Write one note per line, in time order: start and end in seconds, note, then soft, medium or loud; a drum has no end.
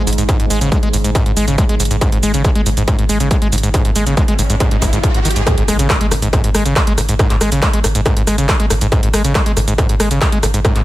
0.00 5.51 G#2 medium
0.07 0.17 G#1 loud
0.07 0.11 G#2 medium
0.07 open hi-hat medium
0.07 shaker medium
0.13 closed hi-hat medium
0.18 0.28 G#1 medium
0.18 0.24 G#2 loud
0.18 closed hi-hat soft
0.18 shaker soft
0.29 0.38 G#2 loud
0.29 kick loud
0.29 closed hi-hat medium
0.29 shaker soft
0.40 0.50 G#1 medium
0.40 0.46 G#2 loud
0.40 closed hi-hat medium
0.50 0.61 G#1 loud
0.50 0.59 G#3 medium
0.50 open hi-hat loud
0.50 shaker medium
0.61 0.72 G#1 medium
0.61 0.70 C#3 medium
0.61 closed hi-hat medium
0.61 shaker soft
0.72 0.78 G#3 loud
0.72 kick loud
0.72 closed hi-hat medium
0.72 shaker soft
0.83 0.93 G#1 medium
0.83 0.89 G#3 loud
0.83 closed hi-hat soft
0.93 1.04 G#1 loud
0.93 0.97 G#2 medium
0.93 open hi-hat medium
0.93 shaker medium
1.04 1.15 G#1 medium
1.04 1.10 G#2 loud
1.04 closed hi-hat medium
1.04 shaker soft
1.15 1.24 G#2 loud
1.15 kick loud
1.15 closed hi-hat medium
1.15 shaker soft
1.26 1.36 G#1 medium
1.26 1.32 G#2 loud
1.26 closed hi-hat soft
1.37 1.47 G#1 loud
1.37 1.46 G#3 medium
1.37 open hi-hat loud
1.37 shaker medium
1.48 1.58 G#1 medium
1.48 1.56 C#3 medium
1.48 closed hi-hat soft
1.48 shaker soft
1.58 1.64 G#3 loud
1.58 kick loud
1.58 closed hi-hat medium
1.58 shaker soft
1.69 1.79 G#1 medium
1.69 1.75 G#3 loud
1.69 closed hi-hat medium
1.80 1.90 G#1 medium
1.80 1.83 G#2 medium
1.80 open hi-hat medium
1.80 shaker medium
1.85 closed hi-hat medium
1.91 2.01 G#1 medium
1.91 1.97 G#2 loud
1.91 closed hi-hat soft
1.91 shaker soft
2.01 2.10 G#2 loud
2.01 kick loud
2.01 closed hi-hat medium
2.01 riser medium
2.01 shaker soft
2.12 2.22 G#1 medium
2.12 2.18 G#2 loud
2.12 closed hi-hat medium
2.23 2.33 G#1 loud
2.23 2.32 G#3 medium
2.23 open hi-hat loud
2.23 shaker medium
2.34 2.44 G#1 medium
2.34 2.43 C#3 medium
2.34 closed hi-hat medium
2.34 shaker soft
2.44 2.51 G#3 loud
2.44 kick loud
2.44 closed hi-hat medium
2.44 shaker soft
2.55 2.66 G#1 medium
2.55 2.61 G#3 loud
2.55 closed hi-hat medium
2.66 2.77 G#1 loud
2.66 2.70 G#2 medium
2.66 open hi-hat medium
2.66 shaker medium
2.77 2.87 G#1 medium
2.77 2.83 G#2 loud
2.77 closed hi-hat medium
2.77 shaker soft
2.88 2.97 G#2 loud
2.88 kick loud
2.88 closed hi-hat medium
2.88 shaker soft
2.99 3.09 G#1 medium
2.99 3.05 G#2 loud
2.99 closed hi-hat medium
3.09 3.20 G#1 loud
3.09 3.18 G#3 medium
3.09 open hi-hat loud
3.09 shaker medium
3.20 3.31 G#1 medium
3.20 3.29 C#3 medium
3.20 closed hi-hat medium
3.20 shaker soft
3.31 3.37 G#3 loud
3.31 kick loud
3.31 closed hi-hat medium
3.31 shaker soft
3.42 3.52 G#1 medium
3.42 3.48 G#3 loud
3.42 closed hi-hat medium
3.52 3.63 G#1 loud
3.52 3.56 G#2 medium
3.52 open hi-hat medium
3.52 shaker medium
3.58 closed hi-hat medium
3.63 3.74 G#1 medium
3.63 3.69 G#2 loud
3.63 closed hi-hat medium
3.63 shaker soft
3.74 3.83 G#2 loud
3.74 kick loud
3.74 closed hi-hat medium
3.74 shaker soft
3.85 3.95 G#1 medium
3.85 3.91 G#2 loud
3.85 closed hi-hat medium
3.96 4.06 G#1 loud
3.96 4.05 G#3 medium
3.96 open hi-hat loud
3.96 shaker medium
4.07 4.17 G#1 medium
4.07 4.15 C#3 medium
4.07 closed hi-hat medium
4.07 shaker soft
4.17 4.23 G#3 loud
4.17 kick loud
4.17 closed hi-hat medium
4.17 shaker soft
4.28 4.38 G#1 medium
4.28 4.34 G#3 loud
4.28 closed hi-hat medium
4.39 4.49 G#1 loud
4.39 4.42 G#2 medium
4.39 open hi-hat medium
4.39 shaker medium
4.50 4.60 G#1 medium
4.50 4.56 G#2 loud
4.50 closed hi-hat medium
4.50 shaker soft
4.60 4.69 G#2 loud
4.60 kick loud
4.60 closed hi-hat medium
4.60 shaker soft
4.71 4.81 G#1 medium
4.71 4.77 G#2 loud
4.71 closed hi-hat medium
4.82 4.92 G#1 loud
4.82 4.86 G#2 loud
4.82 kick medium
4.82 open hi-hat loud
4.82 shaker medium
4.93 5.03 G#1 medium
4.93 4.99 G#2 loud
4.93 closed hi-hat medium
4.93 shaker soft
5.03 5.10 G#2 medium
5.03 kick loud
5.03 closed hi-hat medium
5.03 shaker soft
5.14 5.25 G#1 medium
5.14 5.20 G#2 medium
5.14 closed hi-hat medium
5.25 5.36 G#1 loud
5.25 5.29 D#3 medium
5.25 open hi-hat medium
5.25 shaker medium
5.31 closed hi-hat medium
5.36 5.46 G#1 medium
5.36 5.42 G#2 medium
5.36 closed hi-hat medium
5.36 shaker soft
5.47 5.56 G#2 loud
5.47 kick loud
5.47 cross-stick medium
5.47 closed hi-hat medium
5.47 impact medium
5.47 shaker soft
5.58 5.68 G#1 medium
5.58 5.63 G#2 loud
5.58 closed hi-hat medium
5.68 5.79 G#1 loud
5.68 5.77 G#3 medium
5.68 cross-stick medium
5.68 open hi-hat loud
5.68 shaker medium
5.79 5.90 G#1 medium
5.79 5.88 C#3 medium
5.79 closed hi-hat medium
5.79 shaker soft
5.90 5.96 G#3 loud
5.90 kick loud
5.90 cross-stick medium
5.90 clap loud
5.90 closed hi-hat medium
5.90 shaker soft
6.01 6.11 G#1 medium
6.01 6.07 G#3 loud
6.01 closed hi-hat medium
6.11 6.22 G#1 loud
6.11 6.15 G#2 medium
6.11 cross-stick medium
6.11 open hi-hat medium
6.11 shaker medium
6.22 6.33 G#1 medium
6.22 6.28 G#2 loud
6.22 closed hi-hat medium
6.22 shaker soft
6.33 6.42 G#2 loud
6.33 kick loud
6.33 cross-stick medium
6.33 closed hi-hat medium
6.33 shaker soft
6.44 6.54 G#1 medium
6.44 6.50 G#2 loud
6.44 closed hi-hat medium
6.55 6.65 G#1 loud
6.55 6.64 G#3 medium
6.55 cross-stick medium
6.55 open hi-hat loud
6.55 shaker medium
6.66 6.76 G#1 medium
6.66 6.74 C#3 medium
6.66 closed hi-hat medium
6.66 shaker soft
6.76 6.82 G#3 loud
6.76 kick loud
6.76 cross-stick medium
6.76 clap loud
6.76 closed hi-hat medium
6.76 shaker soft
6.87 6.97 G#1 medium
6.87 6.93 G#3 loud
6.87 closed hi-hat medium
6.98 7.08 G#1 loud
6.98 7.01 G#2 medium
6.98 cross-stick medium
6.98 open hi-hat medium
6.98 shaker medium
7.09 7.19 G#1 medium
7.09 7.15 G#2 loud
7.09 closed hi-hat medium
7.09 shaker soft
7.19 7.28 G#2 loud
7.19 kick loud
7.19 cross-stick medium
7.19 closed hi-hat medium
7.19 shaker soft
7.30 7.40 G#1 medium
7.30 7.36 G#2 loud
7.30 clap soft
7.30 closed hi-hat medium
7.41 7.51 G#1 loud
7.41 7.50 G#3 medium
7.41 cross-stick medium
7.41 open hi-hat loud
7.41 shaker medium
7.52 7.62 G#1 medium
7.52 7.61 C#3 medium
7.52 closed hi-hat medium
7.52 shaker soft
7.62 7.69 G#3 loud
7.62 kick loud
7.62 cross-stick medium
7.62 clap loud
7.62 closed hi-hat medium
7.62 shaker soft
7.73 7.83 G#1 medium
7.73 7.79 G#3 loud
7.73 closed hi-hat medium
7.84 7.94 G#1 loud
7.84 7.88 G#2 medium
7.84 cross-stick medium
7.84 open hi-hat loud
7.84 shaker medium
7.95 8.05 G#1 medium
7.95 8.01 G#2 loud
7.95 closed hi-hat medium
7.95 shaker soft
8.06 8.15 G#2 loud
8.06 kick loud
8.06 cross-stick medium
8.06 closed hi-hat medium
8.06 shaker soft
8.17 8.27 G#1 medium
8.17 8.22 G#2 loud
8.17 closed hi-hat medium
8.27 8.38 G#1 loud
8.27 8.36 G#3 medium
8.27 cross-stick medium
8.27 open hi-hat loud
8.27 shaker medium
8.38 8.49 G#1 medium
8.38 8.47 C#3 medium
8.38 closed hi-hat medium
8.38 shaker soft
8.49 kick loud
8.49 cross-stick medium
8.49 clap loud
8.49 closed hi-hat medium
8.49 shaker soft
8.60 8.70 G#1 medium
8.60 8.66 G#3 loud
8.60 closed hi-hat medium
8.70 8.81 G#1 loud
8.70 8.74 G#2 medium
8.70 cross-stick medium
8.70 open hi-hat loud
8.70 shaker medium
8.81 8.92 G#1 medium
8.81 8.87 G#2 loud
8.81 closed hi-hat medium
8.81 shaker soft
8.92 9.01 G#2 loud
8.92 kick loud
8.92 cross-stick medium
8.92 closed hi-hat medium
8.92 shaker soft
9.03 9.13 G#1 medium
9.03 9.09 G#2 loud
9.03 closed hi-hat medium
9.14 9.24 G#1 loud
9.14 9.23 G#3 medium
9.14 cross-stick loud
9.14 open hi-hat loud
9.14 shaker medium
9.24 9.35 G#1 medium
9.24 9.33 C#3 medium
9.24 closed hi-hat medium
9.24 shaker soft
9.35 kick loud
9.35 cross-stick loud
9.35 clap loud
9.35 closed hi-hat medium
9.35 shaker soft
9.46 9.56 G#1 medium
9.46 9.52 G#3 loud
9.46 closed hi-hat medium
9.57 9.67 G#1 loud
9.57 9.60 G#2 medium
9.57 cross-stick medium
9.57 open hi-hat loud
9.57 shaker medium
9.68 9.78 G#1 medium
9.68 9.74 G#2 loud
9.68 closed hi-hat medium
9.68 shaker soft
9.78 9.87 G#2 loud
9.78 kick loud
9.78 cross-stick medium
9.78 closed hi-hat medium
9.78 shaker soft
9.89 9.99 G#1 medium
9.89 9.95 G#2 loud
9.89 closed hi-hat medium
10.00 10.10 G#1 loud
10.00 10.09 G#3 medium
10.00 cross-stick loud
10.00 open hi-hat loud
10.00 shaker medium
10.11 10.21 G#1 medium
10.11 10.20 C#3 medium
10.11 closed hi-hat medium
10.11 shaker soft
10.21 10.28 G#3 loud
10.21 kick loud
10.21 cross-stick medium
10.21 clap loud
10.21 closed hi-hat medium
10.21 shaker soft
10.32 10.42 G#1 medium
10.32 10.38 G#3 loud
10.32 closed hi-hat medium
10.43 10.53 G#1 loud
10.43 10.47 G#2 medium
10.43 cross-stick loud
10.43 open hi-hat loud
10.43 shaker medium
10.54 10.64 G#1 medium
10.54 10.60 G#2 loud
10.54 closed hi-hat medium
10.54 shaker soft
10.65 10.74 G#2 loud
10.65 kick loud
10.65 cross-stick loud
10.65 closed hi-hat medium
10.65 shaker soft
10.76 10.84 G#1 medium
10.76 10.81 G#2 loud
10.76 clap soft
10.76 closed hi-hat medium